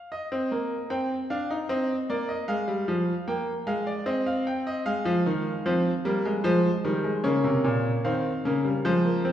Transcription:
0.12 0.88 D#5 medium
0.32 0.51 C4 medium
0.52 0.76 A#3 medium
0.90 1.15 C4 medium
0.90 1.15 G5 medium
1.30 1.49 D4 medium
1.30 1.55 F5 medium
1.50 1.69 D#4 medium
1.69 1.94 C4 medium
1.69 1.94 D#5 medium
2.10 2.34 A#3 medium
2.10 2.28 D5 medium
2.29 2.48 D#5 medium
2.48 2.67 G#3 medium
2.48 3.24 F5 medium
2.68 2.87 G3 medium
2.88 3.12 F3 medium
3.28 3.52 A#3 medium
3.28 3.52 G5 medium
3.67 3.91 G#3 medium
3.67 3.86 F5 medium
3.87 4.05 D5 medium
4.06 4.83 C4 medium
4.06 4.25 D#5 medium
4.27 4.45 F5 medium
4.47 4.65 G5 medium
4.67 4.85 D#5 medium
4.86 5.63 G#3 medium
4.86 6.41 F5 medium
5.05 5.24 F3 medium
5.26 5.50 D#3 medium
5.66 5.90 F3 medium
5.66 5.90 C4 medium
6.05 6.24 G3 medium
6.05 6.30 A#3 medium
6.25 6.43 G#3 medium
6.44 6.69 F3 medium
6.44 6.69 G#3 medium
6.44 7.22 C5 medium
6.84 7.09 D#3 medium
6.84 7.04 G3 medium
7.04 7.24 G#3 medium
7.24 7.44 C#3 medium
7.24 8.02 A#3 medium
7.24 8.02 C#5 medium
7.44 7.64 C3 medium
7.64 7.89 A#2 medium
8.04 8.29 D#3 medium
8.04 8.30 C4 medium
8.04 8.82 F5 medium
8.45 8.70 C#3 medium
8.45 8.64 A#3 medium
8.64 8.84 G3 medium
8.85 9.32 F3 medium
8.85 9.04 G#3 medium
8.85 9.32 C5 medium
9.05 9.24 A#3 medium
9.25 9.32 C4 medium

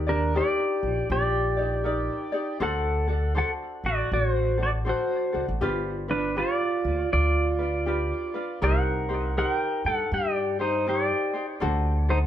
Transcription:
0.00 0.39 D#2 loud
0.07 0.34 D4 medium
0.07 0.34 G4 soft
0.07 0.37 A#4 medium
0.07 0.35 D5 soft
0.34 1.57 D#4 medium
0.34 1.57 G4 medium
0.34 1.07 G4 medium
0.34 1.58 A#4 medium
0.34 1.57 D5 medium
0.34 1.11 D5 medium
0.83 1.01 A#1 medium
1.10 2.08 A#1 medium
1.10 2.58 G4 medium
1.10 2.63 D5 medium
1.57 1.84 D#4 soft
1.57 1.84 G4 soft
1.57 1.85 D5 soft
1.84 2.33 D#4 medium
1.84 2.32 G4 medium
1.84 2.33 A#4 medium
1.84 2.31 D5 medium
2.32 2.60 D#4 soft
2.32 2.61 G4 medium
2.32 2.60 D5 medium
2.60 3.40 D2 medium
2.60 3.08 D4 medium
2.60 3.07 F#4 medium
2.60 3.06 A4 medium
2.60 3.33 A4 medium
2.60 3.07 C5 medium
2.60 3.33 F#5 medium
3.08 3.34 D4 soft
3.08 3.35 F#4 soft
3.08 3.34 A4 soft
3.35 4.59 D4 medium
3.35 4.57 F#4 medium
3.35 4.56 A4 medium
3.35 3.50 A4 medium
3.35 4.57 C5 medium
3.35 3.51 F#5 medium
3.84 4.02 A1 medium
3.84 4.11 F#4 medium
3.84 4.13 D5 medium
4.12 4.91 A1 medium
4.12 4.57 F#4 medium
4.12 4.31 C#5 medium
4.31 4.61 C5 medium
4.58 4.85 D4 soft
4.58 4.85 F#4 soft
4.58 4.84 A4 soft
4.63 4.70 F#4 medium
4.63 4.70 D5 medium
4.85 5.33 D4 medium
4.85 5.33 F#4 medium
4.85 5.31 A4 medium
4.85 5.32 C5 medium
4.89 5.45 F#4 medium
4.89 5.45 C5 medium
5.33 5.47 C2 medium
5.33 5.60 D4 soft
5.33 5.61 F#4 soft
5.33 5.61 A4 soft
5.48 5.61 A1 medium
5.61 6.41 G1 loud
5.61 6.09 D4 medium
5.61 6.08 F4 medium
5.61 6.09 G4 medium
5.61 6.07 B4 medium
6.08 6.36 D4 soft
6.08 6.36 D4 medium
6.08 6.36 F4 soft
6.08 6.36 B4 soft
6.08 6.37 B4 medium
6.36 7.60 D4 medium
6.36 7.59 F4 medium
6.36 7.09 F4 medium
6.36 7.63 G4 medium
6.36 7.58 B4 medium
6.36 7.12 D5 medium
6.85 7.02 D2 medium
7.13 8.10 D2 medium
7.13 8.59 F4 medium
7.13 8.63 D5 loud
7.59 7.85 D4 soft
7.59 7.86 F4 soft
7.59 7.87 B4 soft
7.86 8.34 D4 medium
7.86 8.34 F4 medium
7.86 8.34 G4 medium
7.86 8.33 B4 medium
8.34 8.62 D4 soft
8.34 8.62 F4 soft
8.34 8.62 B4 medium
8.62 9.42 C2 loud
8.62 9.10 D#4 medium
8.62 9.08 G4 medium
8.62 9.10 A#4 medium
8.62 9.34 A#4 medium
8.62 9.08 C5 medium
8.62 9.39 F#5 loud
9.09 9.36 D#4 soft
9.09 9.36 G4 soft
9.09 9.37 C5 soft
9.37 10.59 D#4 medium
9.37 10.59 G4 medium
9.37 9.82 A#4 medium
9.37 10.59 C5 medium
9.37 9.52 F#5 loud
9.52 9.87 G5 loud
9.84 10.02 G2 medium
9.84 10.12 A4 medium
9.84 10.14 F#5 medium
10.12 11.09 G2 medium
10.12 10.57 G4 medium
10.12 10.61 D5 loud
10.59 10.86 D#4 soft
10.59 10.86 D#4 medium
10.59 10.87 G4 soft
10.59 10.86 C5 medium
10.59 10.89 C5 medium
10.86 11.34 D#4 medium
10.86 11.33 G4 medium
10.86 11.45 G4 medium
10.86 11.34 A#4 medium
10.86 11.32 C5 medium
10.86 11.46 D5 medium
11.34 11.61 D#4 soft
11.34 11.61 G4 soft
11.34 11.59 C5 soft
11.60 12.27 D2 loud
11.60 12.09 D4 medium
11.60 12.08 F#4 loud
11.60 12.07 A4 medium
11.60 12.08 C5 medium
12.09 12.18 D#4 medium
12.09 12.27 F#4 soft
12.09 12.27 A4 medium
12.09 12.18 C5 medium

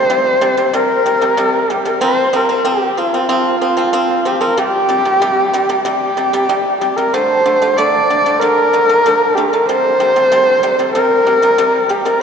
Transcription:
0.00 0.76 C5 loud
0.10 0.36 C3 medium
0.10 0.36 G3 medium
0.41 0.55 C3 medium
0.41 0.55 G3 medium
0.57 0.71 C3 medium
0.57 0.71 G3 medium
0.73 1.00 C3 medium
0.73 1.00 G3 medium
0.73 1.73 A#4 medium
1.06 1.19 C3 medium
1.06 1.19 G3 medium
1.21 1.35 C3 medium
1.21 1.35 G3 medium
1.37 1.63 C3 medium
1.37 1.64 G3 medium
1.70 1.83 C3 medium
1.70 1.83 G3 medium
1.70 1.89 G4 medium
1.85 1.99 C3 medium
1.85 1.99 G3 medium
1.85 2.02 A#4 medium
2.01 2.27 F3 medium
2.01 2.27 C4 loud
2.01 2.37 C5 loud
2.33 2.46 F3 medium
2.33 2.46 C4 medium
2.33 2.69 A#4 medium
2.49 2.62 F3 medium
2.49 2.62 C4 medium
2.65 2.91 F3 medium
2.65 2.91 C4 loud
2.65 3.00 G4 medium
2.97 3.10 F3 medium
2.97 3.11 C4 medium
2.97 3.30 F4 medium
3.14 3.27 F3 medium
3.14 3.27 C4 medium
3.29 3.55 F3 medium
3.29 3.55 C4 medium
3.29 4.27 F4 medium
3.61 3.74 F3 medium
3.61 3.74 C4 medium
3.77 3.90 F3 medium
3.77 3.90 C4 medium
3.93 4.19 F3 medium
3.93 4.19 C4 loud
4.25 4.38 F3 medium
4.25 4.38 C4 medium
4.25 4.43 G4 medium
4.41 4.54 F3 medium
4.41 4.54 C4 medium
4.41 4.59 A#4 medium
4.57 4.83 C3 medium
4.57 4.83 G3 medium
4.57 5.85 G4 loud
4.89 5.02 C3 medium
4.89 5.02 G3 medium
5.05 5.18 C3 medium
5.05 5.18 G3 medium
5.22 5.47 C3 medium
5.22 5.47 G3 loud
5.53 5.66 C3 medium
5.53 5.66 G3 medium
5.69 5.82 C3 medium
5.69 5.82 G3 medium
5.85 6.10 C3 medium
5.85 6.11 G3 medium
5.85 6.77 G4 loud
6.17 6.30 C3 medium
6.17 6.30 G3 medium
6.33 6.46 C3 medium
6.33 6.46 G3 medium
6.49 6.74 C3 medium
6.49 6.74 G3 medium
6.81 6.94 C3 medium
6.81 6.94 G3 medium
6.81 6.98 G4 medium
6.97 7.10 C3 medium
6.97 7.10 G3 medium
6.97 7.15 A#4 medium
7.13 7.38 D3 medium
7.13 7.38 A3 medium
7.13 7.78 C5 loud
7.46 7.58 D3 medium
7.46 7.58 A3 medium
7.62 7.74 D3 medium
7.62 7.74 A3 medium
7.76 8.02 D3 medium
7.76 8.03 A3 medium
7.76 8.41 D5 loud
8.10 8.22 D3 medium
8.10 8.22 A3 medium
8.26 8.37 D3 medium
8.26 8.38 A3 medium
8.40 8.66 D3 medium
8.40 8.66 A3 medium
8.40 9.36 A#4 loud
8.73 8.85 D3 medium
8.73 8.85 A3 medium
8.89 9.01 D3 medium
8.89 9.01 A3 medium
9.06 9.30 D3 medium
9.06 9.30 A3 medium
9.35 9.49 D3 medium
9.35 9.49 A3 medium
9.35 9.52 G4 medium
9.50 9.65 D3 medium
9.50 9.65 A3 medium
9.50 9.67 A#4 medium
9.66 9.93 C3 medium
9.66 9.93 G3 medium
9.66 10.93 C5 loud
10.00 10.12 C3 medium
10.00 10.12 G3 medium
10.16 10.28 C3 medium
10.16 10.28 G3 medium
10.32 10.56 C3 medium
10.32 10.56 G3 medium
10.63 10.75 C3 medium
10.63 10.75 G3 medium
10.79 10.91 C3 medium
10.79 10.91 G3 medium
10.94 11.20 C3 medium
10.94 11.20 G3 medium
10.94 11.91 A#4 loud
11.27 11.39 C3 medium
11.27 11.39 G3 medium
11.42 11.55 C3 medium
11.42 11.55 G3 medium
11.58 11.83 C3 medium
11.58 11.83 G3 loud
11.89 12.02 C3 medium
11.89 12.02 G3 medium
11.89 12.07 G4 medium
12.05 12.18 C3 medium
12.05 12.18 G3 medium
12.05 12.22 A#4 medium

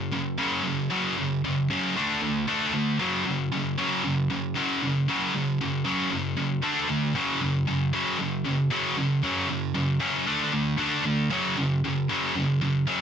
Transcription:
0.00 0.10 F#2 medium
0.00 0.11 C#3 medium
0.12 0.36 F#2 medium
0.12 0.37 C#3 medium
0.38 0.63 F#2 loud
0.38 0.63 C#3 loud
0.38 0.64 F#3 loud
0.64 0.88 F#2 medium
0.64 0.88 C#3 medium
0.90 1.15 F#2 medium
0.90 1.16 C#3 medium
0.90 1.16 F#3 medium
1.18 1.41 F#2 medium
1.18 1.41 C#3 medium
1.44 1.67 F#2 medium
1.44 1.68 C#3 medium
1.70 1.94 F#2 loud
1.70 1.95 C#3 medium
1.70 1.95 F#3 medium
1.96 2.20 D3 medium
1.96 2.21 A3 loud
1.96 2.21 D4 medium
2.22 2.45 D3 medium
2.22 2.45 A3 medium
2.48 2.72 D3 medium
2.48 2.73 A3 loud
2.48 2.73 D4 loud
2.74 2.97 D3 medium
2.74 2.97 A3 medium
3.00 3.24 F#2 medium
3.00 3.25 C#3 medium
3.00 3.25 F#3 loud
3.26 3.49 F#2 medium
3.26 3.49 C#3 medium
3.52 3.75 F#2 medium
3.52 3.76 C#3 medium
3.78 4.02 F#2 medium
3.78 4.03 C#3 loud
3.78 4.03 F#3 loud
4.04 4.27 F#2 medium
4.04 4.27 C#3 medium
4.30 4.53 F#2 medium
4.30 4.53 C#3 medium
4.55 4.80 F#2 medium
4.55 4.80 C#3 loud
4.55 4.81 F#3 loud
4.82 5.05 F#2 medium
4.82 5.06 C#3 medium
5.08 5.32 F#2 medium
5.08 5.33 C#3 medium
5.08 5.33 F#3 loud
5.34 5.57 F#2 medium
5.34 5.57 C#3 medium
5.61 5.83 F#2 medium
5.61 5.84 C#3 medium
5.85 6.09 F#2 loud
5.85 6.10 C#3 loud
5.85 6.10 F#3 loud
6.11 6.35 F#2 medium
6.11 6.35 C#3 medium
6.37 6.61 F#2 medium
6.37 6.61 C#3 medium
6.62 6.87 D3 medium
6.62 6.88 A3 loud
6.62 6.88 D4 loud
6.89 7.13 D3 medium
6.89 7.12 A3 medium
7.15 7.40 F#2 medium
7.15 7.40 C#3 loud
7.15 7.40 F#3 medium
7.41 7.65 F#2 medium
7.41 7.65 C#3 medium
7.67 7.91 F#2 medium
7.67 7.91 C#3 medium
7.93 8.18 F#2 loud
7.93 8.18 C#3 medium
7.93 8.18 F#3 loud
8.19 8.42 F#2 medium
8.19 8.43 C#3 loud
8.45 8.68 F#2 medium
8.45 8.69 C#3 medium
8.70 8.95 F#2 loud
8.70 8.96 C#3 loud
8.70 8.96 F#3 loud
8.97 9.20 F#2 medium
8.97 9.21 C#3 medium
9.23 9.48 F#2 medium
9.23 9.48 C#3 medium
9.23 9.48 F#3 medium
9.49 9.72 F#2 medium
9.49 9.73 C#3 medium
9.74 9.98 F#2 medium
9.74 9.98 C#3 medium
10.00 10.25 F#2 medium
10.00 10.25 C#3 medium
10.00 10.26 F#3 loud
10.26 10.51 D3 loud
10.26 10.51 A3 loud
10.26 10.52 D4 loud
10.52 10.76 D3 medium
10.52 10.76 A3 medium
10.78 11.03 D3 loud
10.78 11.03 A3 loud
10.78 11.04 D4 loud
11.05 11.28 D3 medium
11.05 11.29 A3 medium
11.31 11.55 F#2 medium
11.31 11.56 C#3 medium
11.31 11.56 F#3 loud
11.57 11.81 F#2 medium
11.57 11.81 C#3 medium
11.84 12.07 F#2 medium
11.84 12.07 C#3 medium
12.09 12.34 F#2 medium
12.09 12.34 C#3 loud
12.09 12.34 F#3 loud
12.36 12.59 F#2 medium
12.36 12.59 C#3 medium
12.61 12.85 F#2 medium
12.61 12.85 C#3 medium
12.87 13.01 F#2 loud
12.87 13.01 C#3 loud
12.87 13.01 F#3 loud

